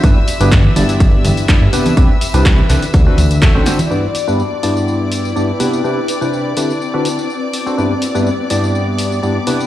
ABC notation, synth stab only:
X:1
M:4/4
L:1/16
Q:1/4=124
K:G
V:1 name="Synth stab"
[G,,B,DEGB] z2 [G,,B,DEGB] z2 [G,,B,DEGd]6 [G,,B,DEGd] z [C,B,DEGB]2 | [C,CDEGB] z2 [C,CDEGB]3 [D,CDEGB] z2 [D,CDFAB] z2 [D,CDFAe] [D,CDFAc]2 z | [G,,B,DEGB] z2 [G,,B,DEGB] z2 [G,,B,DEGd]6 [G,,B,DEGd] z [C,B,DEGB]2 | [C,CDEGB] z2 [C,CDEGB]3 [D,CDEGB] z2 [D,CDFAB] z4 z [CDFAc] |
[G,,B,DEGB] z2 [G,,B,DEGB] z2 [G,,B,DEGd]6 [G,,B,DEGd] z [C,B,DEGB]2 |]